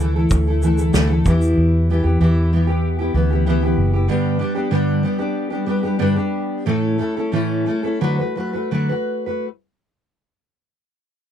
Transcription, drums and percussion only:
0.30 kick loud
0.30 shaker medium
0.63 shaker medium
0.78 shaker medium
0.94 snare loud
0.94 shaker medium
1.25 kick medium
1.25 shaker soft
1.42 shaker soft

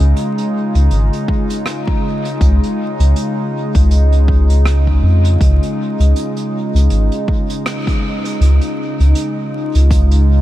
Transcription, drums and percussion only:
0.00 closed hi-hat soft
0.16 closed hi-hat medium
0.38 closed hi-hat soft
0.75 closed hi-hat soft
0.91 closed hi-hat medium
1.13 closed hi-hat soft
1.28 kick loud
1.50 closed hi-hat medium
1.66 cross-stick medium
1.66 closed hi-hat medium
1.87 kick medium
2.25 closed hi-hat medium
2.41 kick loud
2.41 closed hi-hat medium
2.63 closed hi-hat soft
3.00 closed hi-hat medium
3.16 closed hi-hat medium
3.75 kick loud
3.75 closed hi-hat medium
3.91 closed hi-hat medium
4.12 closed hi-hat soft
4.28 kick medium
4.50 closed hi-hat medium
4.66 cross-stick medium
4.66 closed hi-hat medium
4.87 kick medium
5.25 closed hi-hat medium
5.41 kick loud
5.41 closed hi-hat medium
5.63 closed hi-hat soft
6.00 closed hi-hat medium
6.16 closed hi-hat medium
6.37 closed hi-hat soft
6.76 closed hi-hat medium
6.90 closed hi-hat medium
7.12 closed hi-hat soft
7.28 kick loud
7.50 closed hi-hat medium
7.66 cross-stick medium
7.66 closed hi-hat medium
7.87 kick medium
7.87 closed hi-hat soft
8.25 closed hi-hat medium
8.41 closed hi-hat medium
8.61 closed hi-hat soft
9.00 closed hi-hat medium
9.15 closed hi-hat medium
9.75 closed hi-hat medium
9.91 kick loud
9.91 closed hi-hat medium
10.11 closed hi-hat soft

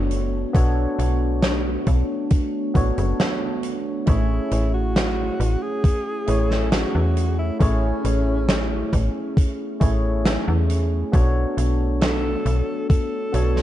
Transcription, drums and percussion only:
0.11 closed hi-hat medium
0.55 kick loud
0.55 closed hi-hat medium
0.99 closed hi-hat medium
1.43 snare loud
1.43 closed hi-hat medium
1.86 kick medium
1.86 closed hi-hat medium
2.30 kick loud
2.30 closed hi-hat medium
2.75 kick loud
2.75 closed hi-hat medium
2.98 closed hi-hat medium
3.20 snare loud
3.20 closed hi-hat medium
3.63 closed hi-hat medium
4.07 kick loud
4.07 closed hi-hat medium
4.51 closed hi-hat medium
4.96 snare loud
4.96 closed hi-hat medium
5.40 closed hi-hat medium
5.84 kick loud
5.84 closed hi-hat medium
6.27 closed hi-hat medium
6.51 snare soft
6.72 snare loud
6.72 closed hi-hat medium
7.17 closed hi-hat medium
7.61 kick loud
7.61 closed hi-hat medium
8.04 closed hi-hat medium
8.49 snare loud
8.49 closed hi-hat loud
8.93 kick medium
8.93 closed hi-hat medium
9.37 kick loud
9.37 closed hi-hat medium
9.81 kick loud
9.81 closed hi-hat medium
10.25 snare loud
10.25 closed hi-hat medium
10.70 closed hi-hat medium
11.13 kick loud
11.13 closed hi-hat medium
11.58 closed hi-hat medium
12.01 snare loud
12.01 closed hi-hat medium
12.46 closed hi-hat medium
12.90 kick loud
12.90 closed hi-hat medium
13.34 closed hi-hat medium
13.56 snare soft

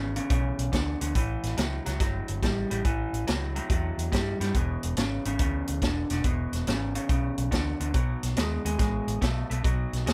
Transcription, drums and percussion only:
0.16 closed hi-hat medium
0.30 kick loud
0.30 closed hi-hat medium
0.59 closed hi-hat medium
0.73 kick medium
0.73 snare loud
0.73 closed hi-hat medium
1.01 closed hi-hat medium
1.15 kick loud
1.15 closed hi-hat medium
1.43 snare soft
1.43 closed hi-hat medium
1.57 snare loud
1.57 closed hi-hat medium
1.86 snare soft
1.86 closed hi-hat medium
2.00 kick loud
2.00 snare soft
2.00 closed hi-hat medium
2.28 closed hi-hat medium
2.43 kick medium
2.43 snare loud
2.43 closed hi-hat medium
2.71 closed hi-hat medium
2.85 kick loud
2.85 closed hi-hat medium
3.14 closed hi-hat soft
3.27 snare loud
3.27 closed hi-hat medium
3.56 closed hi-hat medium
3.70 kick loud
3.70 closed hi-hat medium
3.99 closed hi-hat medium
4.12 kick medium
4.12 snare loud
4.12 closed hi-hat medium
4.41 snare soft
4.41 closed hi-hat medium
4.55 kick loud
4.55 closed hi-hat medium
4.83 closed hi-hat medium
4.97 snare loud
4.97 closed hi-hat medium
5.25 closed hi-hat medium
5.39 kick loud
5.39 closed hi-hat medium
5.67 closed hi-hat medium
5.82 kick medium
5.82 snare loud
5.82 closed hi-hat medium
6.10 snare soft
6.10 closed hi-hat medium
6.24 kick loud
6.24 closed hi-hat medium
6.53 snare soft
6.53 closed hi-hat medium
6.67 snare loud
6.67 closed hi-hat medium
6.95 closed hi-hat medium
7.09 kick loud
7.09 closed hi-hat medium
7.38 closed hi-hat medium
7.52 kick medium
7.52 snare loud
7.52 closed hi-hat medium
7.80 closed hi-hat medium
7.94 kick loud
7.94 closed hi-hat medium
8.23 snare soft
8.23 closed hi-hat medium
8.37 snare loud
8.37 closed hi-hat medium
8.66 closed hi-hat medium
8.79 kick loud
8.79 snare soft
8.79 closed hi-hat medium
9.08 closed hi-hat medium
9.22 kick medium
9.22 snare loud
9.22 closed hi-hat medium
9.51 closed hi-hat medium
9.64 kick loud
9.64 closed hi-hat medium
9.93 snare soft
9.93 closed hi-hat medium
10.07 snare loud
10.07 closed hi-hat medium

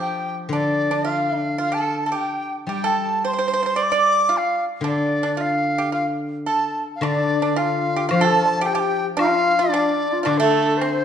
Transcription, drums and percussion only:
7.02 high woodblock medium
7.57 low woodblock soft
8.11 high woodblock medium
8.66 low woodblock soft
9.19 high woodblock medium
9.73 low woodblock soft
10.26 high woodblock medium
10.81 high woodblock soft
10.81 low woodblock soft

